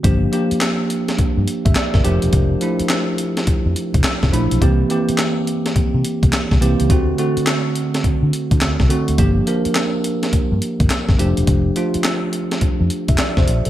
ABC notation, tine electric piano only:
X:1
M:4/4
L:1/16
Q:"Swing 16ths" 1/4=105
K:Gdor
V:1 name="Tine electric piano"
z8 z3 e d B2 z | z16 | z16 | z16 |
z16 | z8 z3 e d c2 A |]
V:2 name="Tine electric piano"
[F,B,DG]2 [F,B,DG]6 z6 [F,A,DG]2- | [F,A,DG]2 [F,A,DE]6 z6 [F,A,DE]2 | [E,B,CG]2 [E,B,CG]6 z6 [E,B,CG]2 | [D,A,C^F]2 [D,A,CF]6 z6 [D,A,CF]2 |
[F,B,DG]2 [F,B,DB]6 z6 [F,A,DG]2- | [F,A,DG]2 [F,A,DF]6 z8 |]